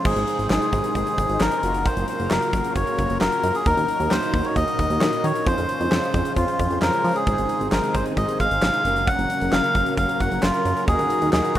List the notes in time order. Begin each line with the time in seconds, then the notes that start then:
0.05 G#1 C3 D#3 G#3 D#4 G#4 C5, kick, crash
0.16 G#1, closed hi-hat
0.28 closed hi-hat
0.39 G#1, closed hi-hat
0.50 G#1 G#4, snare, clap
0.62 closed hi-hat
0.73 G#1, kick, closed hi-hat
0.84 closed hi-hat
0.95 G#1 G#4, kick, closed hi-hat
1.07 closed hi-hat
1.18 G#1, kick, closed hi-hat
1.29 G#1, closed hi-hat
1.41 G#1 A#4, snare, clap
1.52 closed hi-hat
1.63 F#1 C#3 F#3 A#3 F4 F#4 A#4 F5, closed hi-hat
1.74 closed hi-hat
1.85 C5, kick, closed hi-hat
1.97 F#1, closed hi-hat
2.08 C5, closed hi-hat
2.20 F#1, closed hi-hat
2.31 F#1 A#4, snare, clap
2.42 closed hi-hat
2.53 F#1, kick, closed hi-hat
2.64 closed hi-hat
2.76 F#1 C#5, kick, closed hi-hat
2.87 closed hi-hat
2.98 F#1, kick, closed hi-hat
3.10 F#1, closed hi-hat
3.21 F#1 A#4, snare, clap
3.32 closed hi-hat
3.43 F#2, closed hi-hat
3.55 G#4, closed hi-hat
3.66 D#2 A#2 D#3 F#3 D#4 F#4 A#4, kick, closed hi-hat
3.77 D#2, closed hi-hat
3.88 closed hi-hat
4.00 D#2, closed hi-hat
4.11 D#2 C5, snare, clap
4.23 closed hi-hat
4.33 D#2, kick, open hi-hat
4.45 C#5, closed hi-hat
4.56 D#2 D#5, kick, closed hi-hat
4.68 closed hi-hat
4.79 D#2, kick, closed hi-hat
4.90 D#2, closed hi-hat
5.01 D#2, snare, clap
5.13 closed hi-hat
5.24 D#3 C#5, closed hi-hat
5.35 closed hi-hat
5.46 F2 C#3 F3 G#3 C#4 F4 C5, kick, closed hi-hat
5.58 F2, closed hi-hat
5.69 closed hi-hat
5.80 F2, closed hi-hat
5.92 F2, snare, clap
6.03 closed hi-hat
6.14 F2, kick, closed hi-hat
6.25 closed hi-hat
6.36 F2 F4, kick, closed hi-hat
6.48 closed hi-hat
6.59 F2, kick, closed hi-hat
6.70 F2, closed hi-hat
6.82 F2 A#4, snare, clap
6.93 closed hi-hat
7.04 F3, open hi-hat
7.16 G#4, closed hi-hat
7.27 G#1 C3 D#3 D#4 G#4 C5, kick, closed hi-hat
7.38 G#1, closed hi-hat
7.49 closed hi-hat
7.61 G#1, closed hi-hat
7.72 G#1 A#4, snare, clap
7.84 closed hi-hat
7.94 G#1 C5, kick, closed hi-hat
8.06 closed hi-hat
8.17 G#1 D#5, kick, closed hi-hat
8.28 closed hi-hat
8.40 G#1 F5, kick, closed hi-hat
8.51 G#1, closed hi-hat
8.62 G#1, snare, clap
8.73 closed hi-hat
8.85 F#1 C#3 F#3 A#3 C#4 A#4, closed hi-hat
8.96 closed hi-hat
9.07 F#5, kick, closed hi-hat
9.19 F#1, closed hi-hat
9.30 closed hi-hat
9.41 F#1, closed hi-hat
9.52 F#1 F5, snare, clap
9.64 closed hi-hat
9.75 F#1, kick, closed hi-hat
9.86 closed hi-hat
9.97 F#1 F5, kick, closed hi-hat
10.09 closed hi-hat
10.20 F#1 F#5, kick, closed hi-hat
10.31 F#1, closed hi-hat
10.43 F#1 F4, snare, clap
10.54 closed hi-hat
10.65 F#2, closed hi-hat
10.77 closed hi-hat
10.88 D#2 A#2 D#3 F#3 D#4 F#4 G#4 A#4, kick, closed hi-hat
10.99 D#2, closed hi-hat
11.10 closed hi-hat
11.22 D#2, closed hi-hat
11.33 D#2 G#4, snare, clap
11.44 closed hi-hat
11.55 D#2 F#4, kick, closed hi-hat